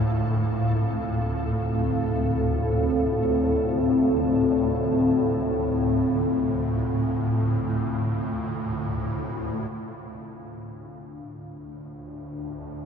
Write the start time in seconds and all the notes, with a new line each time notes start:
Already playing: D2 A2 A3 C4 D4 A4 C5 F5
0.36 A4
9.72 D2 A2 D4
12.11 C5